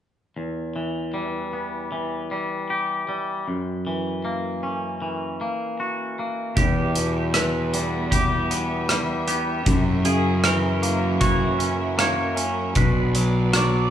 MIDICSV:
0, 0, Header, 1, 6, 480
1, 0, Start_track
1, 0, Key_signature, 1, "minor"
1, 0, Tempo, 775194
1, 222, Time_signature, 4, 2, 24, 8
1, 8607, End_track
2, 0, Start_track
2, 0, Title_t, "Clean electric guitar"
2, 0, Program_c, 0, 27
2, 4065, Note_on_c, 0, 67, 47
2, 4541, Note_off_c, 0, 67, 0
2, 4543, Note_on_c, 0, 71, 44
2, 5020, Note_off_c, 0, 71, 0
2, 5022, Note_on_c, 0, 67, 43
2, 5504, Note_off_c, 0, 67, 0
2, 5744, Note_on_c, 0, 67, 41
2, 6222, Note_off_c, 0, 67, 0
2, 6224, Note_on_c, 0, 68, 43
2, 6464, Note_off_c, 0, 68, 0
2, 6468, Note_on_c, 0, 70, 49
2, 6938, Note_off_c, 0, 70, 0
2, 6940, Note_on_c, 0, 73, 48
2, 7422, Note_off_c, 0, 73, 0
2, 7430, Note_on_c, 0, 73, 47
2, 7904, Note_off_c, 0, 73, 0
2, 7907, Note_on_c, 0, 71, 55
2, 8386, Note_off_c, 0, 71, 0
2, 8393, Note_on_c, 0, 74, 51
2, 8607, Note_off_c, 0, 74, 0
2, 8607, End_track
3, 0, Start_track
3, 0, Title_t, "String section"
3, 0, Program_c, 1, 48
3, 4061, Note_on_c, 1, 71, 36
3, 4064, Note_on_c, 1, 55, 41
3, 4064, Note_on_c, 1, 59, 39
3, 4065, Note_on_c, 1, 64, 36
3, 4067, Note_on_c, 1, 76, 45
3, 5963, Note_off_c, 1, 71, 0
3, 5964, Note_off_c, 1, 55, 0
3, 5964, Note_off_c, 1, 59, 0
3, 5965, Note_off_c, 1, 64, 0
3, 5990, Note_on_c, 1, 64, 41
3, 5992, Note_on_c, 1, 54, 45
3, 5993, Note_on_c, 1, 70, 42
3, 5996, Note_on_c, 1, 61, 44
3, 7880, Note_off_c, 1, 76, 0
3, 7881, Note_off_c, 1, 54, 0
3, 7888, Note_off_c, 1, 64, 0
3, 7888, Note_on_c, 1, 54, 50
3, 7888, Note_on_c, 1, 71, 45
3, 7888, Note_on_c, 1, 74, 57
3, 7889, Note_off_c, 1, 70, 0
3, 7890, Note_on_c, 1, 59, 46
3, 7891, Note_off_c, 1, 61, 0
3, 7893, Note_on_c, 1, 62, 45
3, 8607, Note_off_c, 1, 54, 0
3, 8607, Note_off_c, 1, 59, 0
3, 8607, Note_off_c, 1, 62, 0
3, 8607, Note_off_c, 1, 71, 0
3, 8607, Note_off_c, 1, 74, 0
3, 8607, End_track
4, 0, Start_track
4, 0, Title_t, "Clean electric guitar"
4, 0, Program_c, 2, 27
4, 226, Note_on_c, 2, 40, 29
4, 469, Note_on_c, 2, 52, 29
4, 704, Note_on_c, 2, 55, 31
4, 949, Note_on_c, 2, 59, 29
4, 1186, Note_off_c, 2, 52, 0
4, 1189, Note_on_c, 2, 52, 32
4, 1425, Note_off_c, 2, 55, 0
4, 1427, Note_off_c, 2, 40, 0
4, 1432, Note_on_c, 2, 55, 29
4, 1673, Note_on_c, 2, 67, 37
4, 1903, Note_off_c, 2, 55, 0
4, 1910, Note_on_c, 2, 55, 32
4, 2148, Note_off_c, 2, 55, 0
4, 2149, Note_off_c, 2, 59, 0
4, 2150, Note_off_c, 2, 67, 0
4, 2152, Note_on_c, 2, 42, 34
4, 2171, Note_off_c, 2, 52, 0
4, 2394, Note_on_c, 2, 52, 35
4, 2630, Note_on_c, 2, 58, 35
4, 2868, Note_on_c, 2, 61, 34
4, 3099, Note_off_c, 2, 52, 0
4, 3106, Note_on_c, 2, 52, 35
4, 3343, Note_off_c, 2, 58, 0
4, 3350, Note_off_c, 2, 42, 0
4, 3350, Note_on_c, 2, 58, 33
4, 3591, Note_on_c, 2, 66, 38
4, 3826, Note_off_c, 2, 58, 0
4, 3834, Note_on_c, 2, 58, 33
4, 4067, Note_off_c, 2, 52, 0
4, 4067, Note_off_c, 2, 61, 0
4, 4069, Note_off_c, 2, 66, 0
4, 4070, Note_off_c, 2, 58, 0
4, 4072, Note_on_c, 2, 40, 39
4, 4313, Note_on_c, 2, 47, 37
4, 4546, Note_on_c, 2, 52, 39
4, 4788, Note_on_c, 2, 55, 37
4, 5030, Note_on_c, 2, 67, 45
4, 5267, Note_on_c, 2, 59, 39
4, 5268, Note_off_c, 2, 40, 0
4, 5497, Note_off_c, 2, 55, 0
4, 5505, Note_on_c, 2, 55, 40
4, 5509, Note_off_c, 2, 47, 0
4, 5738, Note_off_c, 2, 59, 0
4, 5745, Note_off_c, 2, 52, 0
4, 5745, Note_on_c, 2, 59, 37
4, 5980, Note_on_c, 2, 42, 41
4, 5985, Note_off_c, 2, 55, 0
4, 5985, Note_off_c, 2, 59, 0
4, 5987, Note_off_c, 2, 67, 0
4, 6224, Note_on_c, 2, 49, 41
4, 6465, Note_on_c, 2, 52, 45
4, 6703, Note_on_c, 2, 58, 37
4, 6939, Note_on_c, 2, 66, 48
4, 7175, Note_on_c, 2, 61, 40
4, 7182, Note_off_c, 2, 42, 0
4, 7409, Note_off_c, 2, 58, 0
4, 7416, Note_on_c, 2, 58, 45
4, 7424, Note_off_c, 2, 49, 0
4, 7645, Note_off_c, 2, 61, 0
4, 7653, Note_on_c, 2, 61, 42
4, 7665, Note_off_c, 2, 52, 0
4, 7899, Note_off_c, 2, 61, 0
4, 7899, Note_on_c, 2, 47, 46
4, 7900, Note_off_c, 2, 58, 0
4, 7902, Note_off_c, 2, 66, 0
4, 8145, Note_on_c, 2, 54, 45
4, 8371, Note_off_c, 2, 54, 0
4, 8379, Note_on_c, 2, 54, 50
4, 8607, Note_off_c, 2, 47, 0
4, 8607, Note_off_c, 2, 54, 0
4, 8607, End_track
5, 0, Start_track
5, 0, Title_t, "Fingered electric bass"
5, 0, Program_c, 3, 33
5, 4066, Note_on_c, 3, 40, 41
5, 5960, Note_off_c, 3, 40, 0
5, 5983, Note_on_c, 3, 42, 43
5, 7878, Note_off_c, 3, 42, 0
5, 7899, Note_on_c, 3, 35, 46
5, 8607, Note_off_c, 3, 35, 0
5, 8607, End_track
6, 0, Start_track
6, 0, Title_t, "Drums"
6, 4067, Note_on_c, 9, 36, 59
6, 4067, Note_on_c, 9, 42, 43
6, 4129, Note_off_c, 9, 36, 0
6, 4129, Note_off_c, 9, 42, 0
6, 4306, Note_on_c, 9, 42, 35
6, 4368, Note_off_c, 9, 42, 0
6, 4545, Note_on_c, 9, 37, 57
6, 4545, Note_on_c, 9, 42, 47
6, 4607, Note_off_c, 9, 37, 0
6, 4607, Note_off_c, 9, 42, 0
6, 4791, Note_on_c, 9, 42, 33
6, 4852, Note_off_c, 9, 42, 0
6, 5027, Note_on_c, 9, 36, 49
6, 5029, Note_on_c, 9, 42, 47
6, 5089, Note_off_c, 9, 36, 0
6, 5091, Note_off_c, 9, 42, 0
6, 5270, Note_on_c, 9, 42, 35
6, 5332, Note_off_c, 9, 42, 0
6, 5505, Note_on_c, 9, 37, 57
6, 5505, Note_on_c, 9, 42, 44
6, 5567, Note_off_c, 9, 37, 0
6, 5567, Note_off_c, 9, 42, 0
6, 5743, Note_on_c, 9, 42, 36
6, 5805, Note_off_c, 9, 42, 0
6, 5983, Note_on_c, 9, 42, 49
6, 5984, Note_on_c, 9, 36, 59
6, 6045, Note_off_c, 9, 42, 0
6, 6046, Note_off_c, 9, 36, 0
6, 6223, Note_on_c, 9, 42, 36
6, 6285, Note_off_c, 9, 42, 0
6, 6462, Note_on_c, 9, 37, 64
6, 6462, Note_on_c, 9, 42, 44
6, 6524, Note_off_c, 9, 37, 0
6, 6524, Note_off_c, 9, 42, 0
6, 6706, Note_on_c, 9, 42, 33
6, 6768, Note_off_c, 9, 42, 0
6, 6940, Note_on_c, 9, 42, 45
6, 6943, Note_on_c, 9, 36, 50
6, 7002, Note_off_c, 9, 42, 0
6, 7005, Note_off_c, 9, 36, 0
6, 7183, Note_on_c, 9, 42, 34
6, 7245, Note_off_c, 9, 42, 0
6, 7423, Note_on_c, 9, 37, 65
6, 7423, Note_on_c, 9, 42, 43
6, 7485, Note_off_c, 9, 37, 0
6, 7485, Note_off_c, 9, 42, 0
6, 7661, Note_on_c, 9, 42, 36
6, 7723, Note_off_c, 9, 42, 0
6, 7897, Note_on_c, 9, 42, 50
6, 7901, Note_on_c, 9, 36, 66
6, 7959, Note_off_c, 9, 42, 0
6, 7963, Note_off_c, 9, 36, 0
6, 8141, Note_on_c, 9, 42, 40
6, 8202, Note_off_c, 9, 42, 0
6, 8381, Note_on_c, 9, 37, 66
6, 8381, Note_on_c, 9, 42, 52
6, 8443, Note_off_c, 9, 37, 0
6, 8443, Note_off_c, 9, 42, 0
6, 8607, End_track
0, 0, End_of_file